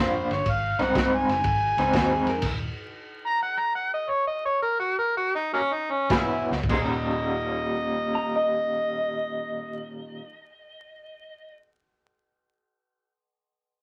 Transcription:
Already playing: F2 F3 A#3
0.00 D4 F4 C5
0.29 G1, snare, ride
0.33 C#5
0.46 G#1, kick, ride
0.50 F5
0.79 C2 D#3 G#3 C4 D#4, snare, ride
0.83 F#5
0.95 C2 D#3 G#3 C4 D#4, kick, snare, ride
1.15 G#5
1.28 F#1, snare, ride
1.44 G#1, kick, ride
1.77 C#2 D#3 G#3 C4 D#4, snare, ride
1.93 D#2 D#3 G#3 C4 D#4 F#4, kick, snare, ride
2.12 G#4
2.26 F2 A#4, snare, ride
2.42 D#1, kick, snare, crash, ride
3.27 A#5
3.42 F#5
3.59 A#5
3.75 F#5
3.94 D#5
4.09 C#5
4.27 D#5
4.45 C#5
4.62 A#4
4.79 F#4
4.98 A#4
5.17 F#4
5.35 D#4
5.53 F#3 A#3 C#4
5.73 D#4
5.92 C#4
6.10 E1 E3 F#3 G#3 B3 C#4 E4 G#5, kick, snare, ride
6.50 C#2, snare
6.63 kick
6.69 D#1 D#2 A#2 D#3 G3 A#3 G#4 C5 D#5, kick, crash
6.73 D#4
8.15 A#5
8.36 D#5

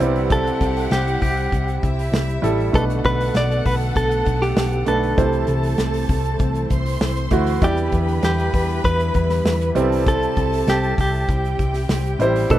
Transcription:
Already playing: G3 E4 B4
0.00 C2 C3 G3 C4 E4 G4 F#5, hi-hat pedal, open hi-hat
0.16 open hi-hat
0.30 A4, kick, hi-hat pedal, open hi-hat
0.46 hi-hat pedal, open hi-hat
0.61 C2, kick, hi-hat pedal, open hi-hat
0.76 hi-hat pedal, open hi-hat
0.91 C2 G4, snare, hi-hat pedal, open hi-hat
1.07 hi-hat pedal
1.22 C2 G4, kick, hi-hat pedal, open hi-hat
1.37 open hi-hat
1.52 C2, kick, hi-hat pedal, open hi-hat
1.68 hi-hat pedal, open hi-hat
1.83 C2 E4 E5, kick, hi-hat pedal, open hi-hat
1.99 hi-hat pedal, open hi-hat
2.12 C2, snare, hi-hat pedal, open hi-hat
2.29 hi-hat pedal
2.42 A1 G3 E4 A4, hi-hat pedal, open hi-hat
2.60 open hi-hat
2.72 B1 B2 D3 A3 B3 D4 A4 B4 F#5, kick, hi-hat pedal, open hi-hat
2.90 hi-hat pedal, open hi-hat
3.04 B1 B4, kick, hi-hat pedal, open hi-hat
3.20 hi-hat pedal, open hi-hat
3.34 B1 D5, snare, hi-hat pedal, open hi-hat
3.51 hi-hat pedal
3.65 B1 B4, kick, hi-hat pedal, open hi-hat
3.81 open hi-hat
3.96 B1 A4, kick, hi-hat pedal, open hi-hat
4.11 hi-hat pedal
4.26 B1, kick, hi-hat pedal, open hi-hat
4.42 G4, snare, open hi-hat
4.57 B1, snare, hi-hat pedal, open hi-hat
4.72 hi-hat pedal
4.86 B1 A3 D4 A4 B4, hi-hat pedal, open hi-hat
5.03 open hi-hat
5.17 C2 C3 E3 A3 C4 E4 A4 C5 A5, kick, hi-hat pedal, open hi-hat
5.33 hi-hat pedal, open hi-hat
5.47 C2, hi-hat pedal, open hi-hat
5.63 hi-hat pedal, open hi-hat
5.78 C2, snare, hi-hat pedal, open hi-hat
5.93 hi-hat pedal, open hi-hat
6.08 C2, kick, hi-hat pedal, open hi-hat
6.24 hi-hat pedal, open hi-hat
6.39 C2, kick, hi-hat pedal, open hi-hat
6.55 hi-hat pedal, open hi-hat
6.70 C2 C5 C6, kick, hi-hat pedal, open hi-hat
6.85 hi-hat pedal, open hi-hat
7.01 C2, snare, hi-hat pedal, open hi-hat
7.16 hi-hat pedal, open hi-hat
7.31 D2 A3 E4 F#4, kick, hi-hat pedal, open hi-hat
7.46 hi-hat pedal, open hi-hat
7.61 E2 D3 E3 G3 B3 E4 G4 B4 D5 B5, kick, hi-hat pedal, open hi-hat
7.77 hi-hat pedal
7.92 E2, kick, hi-hat pedal, open hi-hat
8.08 open hi-hat
8.23 E2 G4, snare, hi-hat pedal, open hi-hat
8.38 hi-hat pedal
8.54 E2, kick, hi-hat pedal, open hi-hat
8.69 open hi-hat
8.84 E2 B4, kick, hi-hat pedal, open hi-hat
9.00 hi-hat pedal, open hi-hat
9.14 E2, kick, hi-hat pedal, open hi-hat
9.30 snare, hi-hat pedal, open hi-hat
9.45 E2, snare, hi-hat pedal, open hi-hat
9.61 hi-hat pedal, open hi-hat
9.75 C2 C3 G3 C4 E4 A4 A5, hi-hat pedal, open hi-hat
9.92 hi-hat pedal, open hi-hat
10.07 A4, kick, hi-hat pedal, open hi-hat
10.22 hi-hat pedal, open hi-hat
10.37 C2, kick, hi-hat pedal, open hi-hat
10.53 hi-hat pedal, open hi-hat
10.67 C2 G4, snare, hi-hat pedal, open hi-hat
10.83 hi-hat pedal
10.98 C2 G4, kick, hi-hat pedal, open hi-hat
11.13 open hi-hat
11.28 C2 G4 G5, kick, hi-hat pedal, open hi-hat
11.45 hi-hat pedal, open hi-hat
11.59 C2, kick, hi-hat pedal, open hi-hat
11.74 snare, hi-hat pedal, open hi-hat
11.89 C2, snare, hi-hat pedal, open hi-hat
12.05 hi-hat pedal, open hi-hat
12.19 A1 G3 E4 C5, hi-hat pedal, open hi-hat
12.35 hi-hat pedal, open hi-hat
12.50 B1 B2 D3 A3 B3 D4 F#4 A4 B4 F#5, kick, hi-hat pedal, open hi-hat

